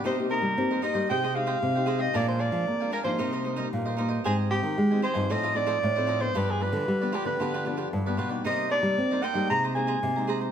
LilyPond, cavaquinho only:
\new Staff \with { instrumentName = "Cavaquinho" } { \time 4/4 \key c \minor \tempo 4 = 114 <ees' bes' c'' ees''>8 <ees' bes' c'' ees''>8. <bes' c'' ees''>16 <ees' bes' c'' ees''>16 <bes' c'' ees''>16 <aes' c'' ees'' g''>16 <aes' c'' ees'' g''>16 <aes' c'' ees'' g''>16 <aes' c'' ees'' g''>16 r16 <c'' ees'' g''>16 <aes' c'' ees'' g''>16 <c'' ees'' g''>16 | <d' bes' f'' aes''>8 <d' bes' f'' aes''>8. <bes' f'' aes''>16 <d' bes' f'' aes''>16 <bes' f'' aes''>16 <ees' bes' c'' ees''>16 <ees' bes' c'' ees''>16 <ees' bes' c'' ees''>16 <ees' bes' c'' ees''>16 r16 <bes' c'' ees''>16 <ees' bes' c'' ees''>16 <bes' c'' ees''>16 | <g' c'' ees'' aes''>8 <c'' ees''>8. <c'' ees'' aes''>16 <g' c'' ees'' aes''>16 <c'' ees'' aes''>16 <f' a' c'' ees''>16 <f' a' c'' ees''>16 <f' a' c'' ees''>16 <f' a' c'' ees''>16 r16 <a' c'' ees''>16 <f' a' c'' ees''>16 <a' c'' ees''>16 | <f' g' b' d''>8 <f' g' b' d''>8. <g' b' d''>16 <f' g' b' d''>16 <g' b' d''>16 <f' g' b' d''>16 <f' g' b' d''>16 <f' g' b' d''>16 <f' g' b' d''>16 r16 <g' b' d''>16 <f' g' b' d''>16 <g' b' d''>16 |
<ees' bes' c'' ees''>8 <ees' bes' c''>8. <bes' c'' ees''>16 <ees' bes' c'' ees''>16 <bes' c'' ees''>16 <aes' c'' bes''>16 <aes' c'' bes''>16 <aes' c'' bes''>16 <aes' c'' bes''>16 r16 <c'' bes''>16 <aes' c'' bes''>16 <c'' bes''>16 | }